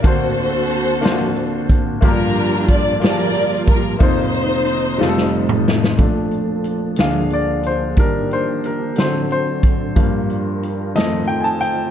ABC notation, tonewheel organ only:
X:1
M:6/8
L:1/8
Q:3/8=60
K:Bb
V:1 name="Tonewheel organ"
[D,B,C^F]6 | [F,G,B,G]6 | [E,B,CF]3 [E,G,A,F]3 | [F,A,DA]3 [D,,F,B,D_A]3 |
[E,B,DG]3 [^F,CDA]3 | [G,DFB]3 [_A,=A,EFc]3 |]